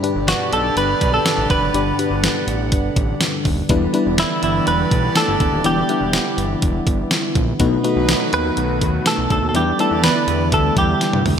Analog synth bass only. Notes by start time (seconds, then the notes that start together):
0.15 G1
0.52 B1
0.76 G1
1.01 B1
1.38 A1
1.50 F1
1.62 F#1
1.74 G1
2.11 G1
2.47 A1
2.72 G1
2.96 A1
3.45 D#1
3.69 E1
4.06 E1
4.43 G1
4.67 E1
4.91 B1
5.28 G1
5.40 E1
5.52 D#1
5.65 E1
6.01 E1
6.37 G1
6.62 E1
6.87 G1
7.35 A#1
7.60 B1
7.96 B1
8.33 D#2
8.57 B1
8.81 D#2
9.18 B1
9.30 D2
9.42 D#2
9.54 E2
9.91 E2
10.27 E2
10.52 D2
10.77 E2
11.13 G2
11.25 D2